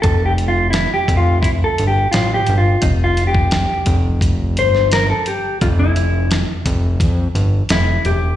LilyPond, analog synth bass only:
\new Staff \with { instrumentName = "Analog synth bass" } { \clef bass \time 4/4 \key f \major \tempo 4 = 86 f,,4~ f,,16 r16 f,,4 g,,8 a,,8 g,,8 | f,,4~ f,,16 r16 f,,4 g,,4 r8 | f,,4~ f,,16 r16 f,,8 f,8 g,,8 f,,8 e,,8 | }